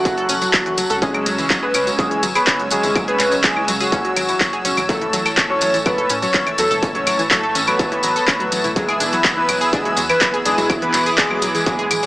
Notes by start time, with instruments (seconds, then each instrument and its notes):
Already playing: analog synth pad F#3 C#4 F#4 A4 F#5 F#6, analog synth lead F#4
0.05 synth arpeggio sound F#3 F#4, kick, closed hi-hat, tambourine
0.18 synth arpeggio sound A4 A5, closed hi-hat
0.29 analog synth bass F#1, synth arpeggio sound C#4 C#5, closed hi-hat, tambourine
0.41 synth arpeggio sound F#3 F#4, closed hi-hat, tambourine
0.54 analog synth pad F#3 C#4 F#4, synth arpeggio sound F#3 F#4, kick, clap, closed hi-hat, tambourine, claves
0.66 synth arpeggio sound E3 E4, closed hi-hat
0.78 analog synth bass F#1, analog synth pad F#3 C#4 F#4, synth arpeggio sound F#3 F#4, closed hi-hat, tambourine
0.90 analog synth bass C#2, synth arpeggio sound A4 A5, closed hi-hat, tambourine
1.02 analog synth pad C#3 G#3 C#4 C#5 G#5 E6, synth arpeggio sound C#4 C#5, analog synth lead G#4, kick, closed hi-hat, tambourine
1.14 synth arpeggio sound F#3 F#4, closed hi-hat, claves
1.26 analog synth bass C#2, synth arpeggio sound F#3 F#4, closed hi-hat, tambourine
1.38 synth arpeggio sound E3 E4, closed hi-hat, tambourine
1.50 synth arpeggio sound F#3 F#4, kick, clap, closed hi-hat, tambourine
1.63 synth arpeggio sound G#4 G#5, analog synth lead B4
1.74 analog synth bass C#2, synth arpeggio sound C#4 C#5, closed hi-hat, tambourine, claves
1.87 synth arpeggio sound F#3 F#4, closed hi-hat, tambourine
1.99 synth arpeggio sound F#3 F#4, analog synth lead G#4, kick, closed hi-hat, tambourine
2.11 synth arpeggio sound E3 E4, closed hi-hat
2.23 analog synth bass G#1, synth arpeggio sound F#3 F#4, closed hi-hat, tambourine
2.35 synth arpeggio sound G#4 G#5, analog synth lead B4, closed hi-hat, tambourine, claves
2.47 analog synth pad C#3 G#3 C#4, synth arpeggio sound C#4 C#5, kick, clap, closed hi-hat, tambourine
2.60 synth arpeggio sound F#3 F#4, closed hi-hat
2.71 analog synth bass G#1, analog synth pad C#3 G#3 C#4, synth arpeggio sound F#3 F#4, analog synth lead G#4, closed hi-hat, tambourine
2.83 analog synth bass G#1, synth arpeggio sound E3 E4, closed hi-hat, tambourine
2.95 analog synth pad C#3 G#3 C#4, synth arpeggio sound F#3 F#4, kick, closed hi-hat, tambourine, claves
3.08 synth arpeggio sound G#4 G#5, analog synth lead B4, closed hi-hat
3.20 analog synth bass C#2, synth arpeggio sound C#4 C#5, clap, closed hi-hat, tambourine
3.31 synth arpeggio sound F#3 F#4, closed hi-hat, tambourine
3.44 synth arpeggio sound F#3 F#4, analog synth lead G#4, kick, clap, closed hi-hat, tambourine
3.56 synth arpeggio sound E3 E4, claves
3.68 analog synth bass C#2, synth arpeggio sound F#3 F#4, closed hi-hat, tambourine
3.80 analog synth lead F#4, synth arpeggio sound G#4 G#5, closed hi-hat, tambourine
3.92 synth arpeggio sound C#4 C#5, kick, closed hi-hat, tambourine
4.05 synth arpeggio sound F#3 F#4, closed hi-hat
4.16 analog synth bass G#1, synth arpeggio sound F#3 F#4, closed hi-hat, tambourine, claves
4.29 synth arpeggio sound E3 E4, closed hi-hat, tambourine
4.41 synth arpeggio sound F#3 F#4, kick, clap, closed hi-hat, tambourine
4.53 synth arpeggio sound G#4 G#5, closed hi-hat
4.65 analog synth bass B1, analog synth pad C#3 G#3 C#4, synth arpeggio sound C#4 C#5, closed hi-hat, tambourine
4.77 analog synth bass A1, synth arpeggio sound F#3 F#4, closed hi-hat, tambourine, claves
4.89 analog synth pad A2 E3 A3 C#5 A5, synth arpeggio sound F#3 F#4, analog synth lead A4, kick, closed hi-hat, tambourine
5.01 synth arpeggio sound E3 E4, closed hi-hat
5.13 analog synth bass A1, synth arpeggio sound F#3 F#4, closed hi-hat, tambourine
5.26 synth arpeggio sound A4 A5, closed hi-hat, tambourine, claves
5.37 synth arpeggio sound C#4 C#5, kick, clap, closed hi-hat, tambourine
5.50 synth arpeggio sound F#3 F#4, analog synth lead C#5
5.61 analog synth bass A1, synth arpeggio sound F#3 F#4, closed hi-hat, tambourine
5.74 synth arpeggio sound E3 E4, closed hi-hat, tambourine
5.86 synth arpeggio sound F#3 F#4, analog synth lead B4, kick, closed hi-hat, tambourine, claves
5.98 synth arpeggio sound A4 A5, closed hi-hat
6.09 analog synth bass A2, synth arpeggio sound C#4 C#5, closed hi-hat, tambourine
6.22 synth arpeggio sound F#3 F#4, analog synth lead C#5, closed hi-hat, tambourine
6.33 analog synth pad A2 E3 A3, synth arpeggio sound F#3 F#4, kick, clap, closed hi-hat, tambourine
6.47 synth arpeggio sound E3 E4, closed hi-hat, claves
6.58 analog synth bass E2, analog synth pad A2 E3 A3, synth arpeggio sound F#3 F#4, analog synth lead A4, closed hi-hat, tambourine
6.71 analog synth bass E1, synth arpeggio sound A4 A5, closed hi-hat, tambourine
6.83 analog synth pad A2 E3 A3, synth arpeggio sound C#4 C#5, kick, closed hi-hat, tambourine
6.95 synth arpeggio sound F#3 F#4, analog synth lead C#5, closed hi-hat
7.07 analog synth bass A1, synth arpeggio sound F#3 F#4, closed hi-hat, tambourine, claves
7.19 synth arpeggio sound E3 E4, closed hi-hat, tambourine
7.31 synth arpeggio sound F#3 F#4, analog synth lead A4, kick, clap, closed hi-hat, tambourine
7.43 synth arpeggio sound A4 A5
7.55 analog synth bass A1, synth arpeggio sound C#4 C#5, closed hi-hat, tambourine
7.67 synth arpeggio sound F#3 F#4, analog synth lead B4, closed hi-hat, tambourine, claves
7.79 synth arpeggio sound F#3 F#4, kick, closed hi-hat, tambourine
7.92 synth arpeggio sound E3 E4, closed hi-hat
8.03 analog synth bass A1, synth arpeggio sound F#3 F#4, closed hi-hat, tambourine
8.16 synth arpeggio sound A4 A5, closed hi-hat, tambourine
8.28 analog synth pad A2 E3 A3, synth arpeggio sound C#4 C#5, kick, clap, closed hi-hat, tambourine, claves
8.40 synth arpeggio sound F#3 F#4, closed hi-hat
8.52 analog synth bass A1, analog synth pad A2 E3 A3, synth arpeggio sound F#3 F#4, closed hi-hat, tambourine
8.64 analog synth bass E1, synth arpeggio sound E3 E4, closed hi-hat, tambourine
8.76 analog synth pad E3 B3 E4 B4 G#5 E6, synth arpeggio sound F#3 F#4, analog synth lead G#4, kick, closed hi-hat, tambourine
8.88 synth arpeggio sound G#4 G#5, closed hi-hat, claves
9.00 analog synth bass E1, synth arpeggio sound D4 D5, closed hi-hat, tambourine
9.13 synth arpeggio sound F#3 F#4, closed hi-hat, tambourine
9.24 synth arpeggio sound F#3 F#4, kick, clap, closed hi-hat, tambourine
9.37 synth arpeggio sound E3 E4, analog synth lead B4
9.49 analog synth bass E1, synth arpeggio sound F#3 F#4, closed hi-hat, tambourine, claves
9.61 synth arpeggio sound G#4 G#5, closed hi-hat, tambourine
9.73 synth arpeggio sound D4 D5, analog synth lead G#4, kick, closed hi-hat, tambourine
9.85 synth arpeggio sound F#3 F#4, closed hi-hat
9.97 analog synth bass E2, synth arpeggio sound F#3 F#4, closed hi-hat, tambourine
10.09 synth arpeggio sound E3 E4, analog synth lead B4, closed hi-hat, tambourine, claves
10.21 analog synth pad E3 B3 E4, synth arpeggio sound F#3 F#4, kick, clap, closed hi-hat, tambourine
10.34 synth arpeggio sound G#4 G#5, closed hi-hat
10.45 analog synth bass B1, analog synth pad E3 B3 E4, synth arpeggio sound D4 D5, analog synth lead G#4, closed hi-hat, tambourine
10.58 analog synth bass B1, synth arpeggio sound F#3 F#4, closed hi-hat, tambourine
10.70 analog synth pad E3 B3 E4 D6, synth arpeggio sound F#3 F#4, kick, closed hi-hat, tambourine, claves
10.82 synth arpeggio sound E3 E4, analog synth lead B4, closed hi-hat
10.94 analog synth bass E1, synth arpeggio sound F#3 F#4, clap, closed hi-hat, tambourine
11.06 synth arpeggio sound G#4 G#5, closed hi-hat, tambourine
11.18 synth arpeggio sound D4 D5, analog synth lead G#4, kick, clap, closed hi-hat, tambourine
11.30 synth arpeggio sound F#3 F#4, claves
11.42 analog synth bass E1, synth arpeggio sound F#3 F#4, closed hi-hat, tambourine
11.55 synth arpeggio sound E3 E4, analog synth lead G#4, closed hi-hat, tambourine
11.66 synth arpeggio sound F#3 F#4, kick, closed hi-hat, tambourine
11.79 synth arpeggio sound G#4 G#5, closed hi-hat
11.91 analog synth bass D1, synth arpeggio sound E3 E4, closed hi-hat, tambourine, claves
12.03 synth arpeggio sound F#3 F#4, closed hi-hat, tambourine